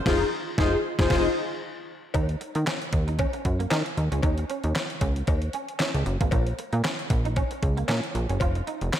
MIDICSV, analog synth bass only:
0, 0, Header, 1, 2, 480
1, 0, Start_track
1, 0, Tempo, 521739
1, 55, Time_signature, 4, 2, 24, 8
1, 8277, End_track
2, 0, Start_track
2, 0, Title_t, "Analog synth bass"
2, 0, Program_c, 0, 38
2, 55, Note_on_c, 0, 29, 107
2, 223, Note_off_c, 0, 29, 0
2, 534, Note_on_c, 0, 29, 104
2, 703, Note_off_c, 0, 29, 0
2, 908, Note_on_c, 0, 29, 103
2, 998, Note_off_c, 0, 29, 0
2, 1014, Note_on_c, 0, 29, 98
2, 1182, Note_off_c, 0, 29, 0
2, 1973, Note_on_c, 0, 39, 98
2, 2171, Note_off_c, 0, 39, 0
2, 2351, Note_on_c, 0, 51, 90
2, 2437, Note_off_c, 0, 51, 0
2, 2693, Note_on_c, 0, 39, 92
2, 3002, Note_off_c, 0, 39, 0
2, 3176, Note_on_c, 0, 42, 86
2, 3373, Note_off_c, 0, 42, 0
2, 3415, Note_on_c, 0, 51, 91
2, 3525, Note_off_c, 0, 51, 0
2, 3655, Note_on_c, 0, 39, 91
2, 3766, Note_off_c, 0, 39, 0
2, 3788, Note_on_c, 0, 37, 80
2, 3876, Note_off_c, 0, 37, 0
2, 3893, Note_on_c, 0, 39, 100
2, 4092, Note_off_c, 0, 39, 0
2, 4269, Note_on_c, 0, 39, 94
2, 4356, Note_off_c, 0, 39, 0
2, 4613, Note_on_c, 0, 37, 89
2, 4811, Note_off_c, 0, 37, 0
2, 4856, Note_on_c, 0, 39, 87
2, 5053, Note_off_c, 0, 39, 0
2, 5469, Note_on_c, 0, 37, 90
2, 5556, Note_off_c, 0, 37, 0
2, 5574, Note_on_c, 0, 30, 89
2, 5685, Note_off_c, 0, 30, 0
2, 5711, Note_on_c, 0, 32, 81
2, 5797, Note_off_c, 0, 32, 0
2, 5814, Note_on_c, 0, 34, 103
2, 6012, Note_off_c, 0, 34, 0
2, 6189, Note_on_c, 0, 46, 94
2, 6276, Note_off_c, 0, 46, 0
2, 6534, Note_on_c, 0, 34, 96
2, 6843, Note_off_c, 0, 34, 0
2, 7016, Note_on_c, 0, 37, 87
2, 7213, Note_off_c, 0, 37, 0
2, 7255, Note_on_c, 0, 46, 104
2, 7366, Note_off_c, 0, 46, 0
2, 7497, Note_on_c, 0, 34, 88
2, 7607, Note_off_c, 0, 34, 0
2, 7631, Note_on_c, 0, 30, 82
2, 7717, Note_off_c, 0, 30, 0
2, 7736, Note_on_c, 0, 29, 99
2, 7933, Note_off_c, 0, 29, 0
2, 8111, Note_on_c, 0, 29, 100
2, 8197, Note_off_c, 0, 29, 0
2, 8277, End_track
0, 0, End_of_file